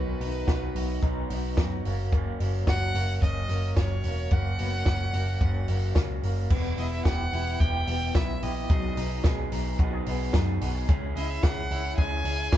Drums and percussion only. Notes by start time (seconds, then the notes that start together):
0.21 open hi-hat
0.48 kick, snare, closed hi-hat
0.76 open hi-hat
1.03 kick, closed hi-hat
1.30 open hi-hat
1.57 kick, snare, closed hi-hat
1.85 open hi-hat
2.12 kick, closed hi-hat
2.40 open hi-hat
2.67 kick, snare, closed hi-hat
2.95 open hi-hat
3.22 kick, closed hi-hat
3.49 open hi-hat
3.77 kick, snare, closed hi-hat
4.04 open hi-hat
4.31 kick, closed hi-hat
4.59 open hi-hat
4.86 kick, snare, closed hi-hat
5.13 open hi-hat
5.41 kick, closed hi-hat
5.68 open hi-hat
5.95 kick, snare, closed hi-hat
6.23 open hi-hat
6.50 kick, crash
6.78 open hi-hat
7.05 kick, snare, closed hi-hat
7.33 open hi-hat
7.60 kick, closed hi-hat
7.87 open hi-hat
8.15 kick, snare, closed hi-hat
8.42 open hi-hat
8.70 kick, closed hi-hat
8.97 open hi-hat
9.24 kick, snare, closed hi-hat
9.52 open hi-hat
9.79 kick, closed hi-hat
10.06 open hi-hat
10.33 kick, snare, closed hi-hat
10.61 open hi-hat
10.89 kick, closed hi-hat
11.17 open hi-hat
11.43 kick, snare, clap, closed hi-hat
11.71 open hi-hat
11.98 kick, closed hi-hat
12.25 open hi-hat
12.52 kick, snare, clap, closed hi-hat